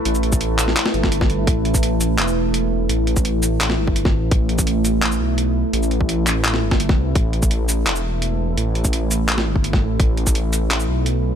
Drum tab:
HH |x-x-x-x-x-x-x-x-|x-x-x-x-x---x---|x-x-x-x-x---x---|x-x-x-x-x---x---|
SH |-x-x--x---------|---x--x--x------|---x--x---------|---x--x--x------|
CP |------x-x-------|--------x-------|--------x-------|--------x-------|
SD |-------o-o-o-o--|----------------|---------o---o--|----------------|
BD |---o-------o-o--|o--o------------|---o-------o-o--|o--o------------|

HH |x-x-x-x-x---x---|x-x-x-x-x---x---|x-x-x-x-x---x---|x-x-x-x-x---x---|
SH |-x----x---------|---x--x--x------|---x--x---------|---x--x--x------|
CP |------x-x-------|--------x-------|--------x-------|--------x-------|
SD |---------o-o-o--|----------------|---------o---o--|----------------|
BD |---o-------o-o--|o--o------------|---o-------o-o--|o--o------------|